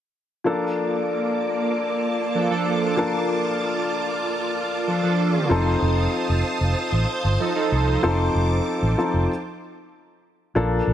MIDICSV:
0, 0, Header, 1, 5, 480
1, 0, Start_track
1, 0, Key_signature, -2, "major"
1, 0, Tempo, 631579
1, 346, Time_signature, 4, 2, 24, 8
1, 8310, End_track
2, 0, Start_track
2, 0, Title_t, "String machine"
2, 0, Program_c, 0, 50
2, 346, Note_on_c, 0, 65, 66
2, 346, Note_on_c, 0, 81, 63
2, 347, Note_on_c, 0, 58, 62
2, 347, Note_on_c, 0, 86, 80
2, 4155, Note_off_c, 0, 81, 0
2, 4156, Note_off_c, 0, 58, 0
2, 4156, Note_off_c, 0, 86, 0
2, 4186, Note_on_c, 0, 72, 66
2, 4187, Note_on_c, 0, 81, 65
2, 4187, Note_on_c, 0, 87, 79
2, 6087, Note_off_c, 0, 87, 0
2, 6104, Note_on_c, 0, 86, 74
2, 7035, Note_off_c, 0, 65, 0
2, 7037, Note_off_c, 0, 72, 0
2, 7037, Note_off_c, 0, 81, 0
2, 7055, Note_off_c, 0, 86, 0
2, 8310, End_track
3, 0, Start_track
3, 0, Title_t, "Analog polysynth"
3, 0, Program_c, 1, 90
3, 1784, Note_on_c, 1, 53, 74
3, 1784, Note_on_c, 1, 62, 74
3, 1784, Note_on_c, 1, 69, 81
3, 1886, Note_off_c, 1, 53, 0
3, 1887, Note_off_c, 1, 62, 0
3, 1887, Note_off_c, 1, 69, 0
3, 1903, Note_on_c, 1, 53, 86
3, 1903, Note_on_c, 1, 62, 91
3, 1903, Note_on_c, 1, 69, 101
3, 2246, Note_off_c, 1, 53, 0
3, 2246, Note_off_c, 1, 62, 0
3, 2246, Note_off_c, 1, 69, 0
3, 3703, Note_on_c, 1, 53, 74
3, 3703, Note_on_c, 1, 62, 72
3, 3703, Note_on_c, 1, 69, 82
3, 3806, Note_off_c, 1, 53, 0
3, 3806, Note_off_c, 1, 62, 0
3, 3806, Note_off_c, 1, 69, 0
3, 3822, Note_on_c, 1, 53, 88
3, 3823, Note_on_c, 1, 62, 94
3, 3823, Note_on_c, 1, 69, 102
3, 4166, Note_off_c, 1, 53, 0
3, 4166, Note_off_c, 1, 62, 0
3, 4166, Note_off_c, 1, 69, 0
3, 5623, Note_on_c, 1, 53, 75
3, 5623, Note_on_c, 1, 63, 75
3, 5624, Note_on_c, 1, 69, 84
3, 5726, Note_off_c, 1, 53, 0
3, 5726, Note_off_c, 1, 63, 0
3, 5726, Note_off_c, 1, 69, 0
3, 5743, Note_on_c, 1, 63, 90
3, 5743, Note_on_c, 1, 69, 102
3, 5744, Note_on_c, 1, 53, 88
3, 6086, Note_off_c, 1, 63, 0
3, 6086, Note_off_c, 1, 69, 0
3, 6087, Note_off_c, 1, 53, 0
3, 8310, End_track
4, 0, Start_track
4, 0, Title_t, "Grand piano"
4, 0, Program_c, 2, 0
4, 337, Note_on_c, 2, 53, 61
4, 342, Note_on_c, 2, 58, 53
4, 349, Note_on_c, 2, 62, 55
4, 354, Note_on_c, 2, 69, 63
4, 491, Control_c, 2, 64, 127
4, 2231, Note_off_c, 2, 53, 0
4, 2233, Note_off_c, 2, 58, 0
4, 2237, Note_off_c, 2, 62, 0
4, 2240, Note_off_c, 2, 69, 0
4, 2253, Note_on_c, 2, 53, 64
4, 2259, Note_on_c, 2, 58, 54
4, 2266, Note_on_c, 2, 62, 55
4, 2270, Note_on_c, 2, 69, 65
4, 4149, Note_off_c, 2, 53, 0
4, 4152, Note_off_c, 2, 58, 0
4, 4155, Note_off_c, 2, 62, 0
4, 4157, Note_off_c, 2, 69, 0
4, 4172, Note_on_c, 2, 53, 59
4, 4177, Note_on_c, 2, 60, 56
4, 4185, Note_on_c, 2, 63, 55
4, 4190, Note_on_c, 2, 69, 68
4, 4194, Control_c, 2, 64, 0
4, 4311, Control_c, 2, 64, 127
4, 6068, Note_off_c, 2, 53, 0
4, 6071, Note_off_c, 2, 60, 0
4, 6075, Note_off_c, 2, 63, 0
4, 6077, Note_off_c, 2, 69, 0
4, 6100, Note_on_c, 2, 53, 62
4, 6102, Note_on_c, 2, 60, 54
4, 6105, Note_on_c, 2, 63, 57
4, 6108, Note_on_c, 2, 69, 68
4, 6811, Note_off_c, 2, 53, 0
4, 6813, Note_off_c, 2, 60, 0
4, 6817, Note_off_c, 2, 63, 0
4, 6818, Note_off_c, 2, 69, 0
4, 6822, Note_on_c, 2, 53, 50
4, 6824, Note_on_c, 2, 60, 45
4, 6828, Note_on_c, 2, 63, 44
4, 6830, Note_on_c, 2, 69, 55
4, 7064, Note_off_c, 2, 53, 0
4, 7065, Note_off_c, 2, 60, 0
4, 7067, Note_off_c, 2, 63, 0
4, 7068, Note_off_c, 2, 69, 0
4, 7077, Control_c, 2, 64, 0
4, 8019, Note_on_c, 2, 53, 71
4, 8025, Note_on_c, 2, 58, 66
4, 8026, Note_on_c, 2, 62, 63
4, 8029, Note_on_c, 2, 69, 75
4, 8184, Control_c, 2, 64, 127
4, 8282, Note_off_c, 2, 53, 0
4, 8285, Note_off_c, 2, 58, 0
4, 8286, Note_off_c, 2, 62, 0
4, 8287, Note_off_c, 2, 69, 0
4, 8310, End_track
5, 0, Start_track
5, 0, Title_t, "Fingered electric bass"
5, 0, Program_c, 3, 33
5, 4181, Note_on_c, 3, 29, 80
5, 4363, Note_off_c, 3, 29, 0
5, 4421, Note_on_c, 3, 29, 86
5, 4603, Note_off_c, 3, 29, 0
5, 4781, Note_on_c, 3, 29, 80
5, 4873, Note_off_c, 3, 29, 0
5, 5021, Note_on_c, 3, 29, 84
5, 5112, Note_off_c, 3, 29, 0
5, 5260, Note_on_c, 3, 33, 75
5, 5352, Note_off_c, 3, 33, 0
5, 5504, Note_on_c, 3, 31, 75
5, 5595, Note_off_c, 3, 31, 0
5, 5865, Note_on_c, 3, 36, 79
5, 6045, Note_off_c, 3, 36, 0
5, 6107, Note_on_c, 3, 29, 84
5, 6287, Note_off_c, 3, 29, 0
5, 6344, Note_on_c, 3, 29, 85
5, 6525, Note_off_c, 3, 29, 0
5, 6704, Note_on_c, 3, 33, 79
5, 6795, Note_off_c, 3, 33, 0
5, 6942, Note_on_c, 3, 29, 74
5, 7034, Note_off_c, 3, 29, 0
5, 8024, Note_on_c, 3, 34, 93
5, 8204, Note_off_c, 3, 34, 0
5, 8262, Note_on_c, 3, 34, 90
5, 8310, Note_off_c, 3, 34, 0
5, 8310, End_track
0, 0, End_of_file